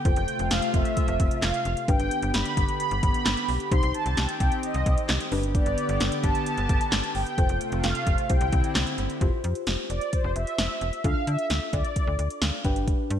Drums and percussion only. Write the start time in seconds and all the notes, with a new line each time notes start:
0.05 kick, closed hi-hat
0.16 closed hi-hat
0.28 closed hi-hat
0.39 closed hi-hat
0.51 snare, closed hi-hat
0.62 closed hi-hat
0.74 kick, closed hi-hat
0.85 closed hi-hat
0.97 kick, closed hi-hat
1.08 closed hi-hat
1.20 kick, closed hi-hat
1.31 closed hi-hat
1.42 snare, clap, closed hi-hat
1.54 closed hi-hat
1.65 closed hi-hat
1.77 closed hi-hat
1.88 kick, closed hi-hat
2.00 closed hi-hat
2.11 closed hi-hat
2.22 closed hi-hat
2.34 snare, closed hi-hat
2.45 closed hi-hat
2.57 kick, closed hi-hat
2.69 closed hi-hat
2.80 closed hi-hat
2.91 closed hi-hat
3.03 kick, closed hi-hat
3.14 closed hi-hat
3.26 snare, clap, closed hi-hat
3.37 closed hi-hat
3.48 open hi-hat
3.60 closed hi-hat
3.71 kick, closed hi-hat
3.83 closed hi-hat
3.94 closed hi-hat
4.06 closed hi-hat
4.17 snare, closed hi-hat
4.29 closed hi-hat
4.40 kick, closed hi-hat
4.52 closed hi-hat
4.63 closed hi-hat
4.74 closed hi-hat
4.86 kick, closed hi-hat
4.98 closed hi-hat
5.09 snare, clap, closed hi-hat
5.20 closed hi-hat
5.32 open hi-hat
5.43 closed hi-hat
5.55 kick, closed hi-hat
5.66 closed hi-hat
5.78 closed hi-hat
5.89 closed hi-hat
6.00 snare, closed hi-hat
6.12 closed hi-hat
6.24 kick, closed hi-hat
6.35 closed hi-hat
6.46 closed hi-hat
6.58 closed hi-hat
6.69 kick, closed hi-hat
6.81 closed hi-hat
6.92 snare, clap, closed hi-hat
7.04 closed hi-hat
7.15 open hi-hat
7.27 closed hi-hat
7.38 kick, closed hi-hat
7.49 closed hi-hat
7.61 closed hi-hat
7.72 closed hi-hat
7.83 snare, closed hi-hat
7.95 closed hi-hat
8.07 kick, closed hi-hat
8.18 closed hi-hat
8.30 kick, closed hi-hat
8.41 closed hi-hat
8.52 kick, closed hi-hat
8.64 closed hi-hat
8.75 snare, clap, closed hi-hat
8.87 closed hi-hat
8.98 closed hi-hat
9.10 closed hi-hat
9.21 kick, closed hi-hat
9.44 closed hi-hat
9.55 closed hi-hat
9.67 snare, closed hi-hat
9.90 closed hi-hat
10.01 closed hi-hat
10.13 kick, closed hi-hat
10.36 closed hi-hat
10.47 closed hi-hat
10.58 snare, closed hi-hat
10.81 closed hi-hat
10.93 closed hi-hat
11.04 kick, closed hi-hat
11.27 closed hi-hat
11.39 closed hi-hat
11.50 snare, closed hi-hat
11.73 kick, closed hi-hat
11.85 closed hi-hat
11.96 kick, closed hi-hat
12.19 closed hi-hat
12.30 closed hi-hat
12.42 snare, closed hi-hat
12.65 kick, closed hi-hat
12.76 closed hi-hat
12.88 kick, closed hi-hat
13.10 closed hi-hat